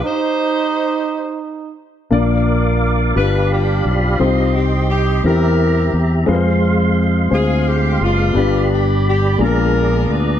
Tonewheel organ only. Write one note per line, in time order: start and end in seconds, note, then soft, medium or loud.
2.13 3.15 A#4 medium
2.13 4.18 D5 medium
2.13 3.15 F5 medium
2.13 3.15 D6 medium
3.17 4.19 G4 medium
3.17 4.19 F5 medium
3.17 4.19 B5 medium
4.20 6.26 G4 medium
4.20 5.23 D#5 medium
4.20 5.23 C6 medium
5.26 6.28 E5 medium
5.26 6.28 A#5 medium
6.28 8.34 G#3 medium
6.28 8.34 F5 medium
6.28 8.34 C6 medium
8.37 9.39 G4 medium
8.37 10.40 D5 medium
8.37 9.39 B5 medium
9.41 10.40 G#4 medium
9.41 10.40 A#5 medium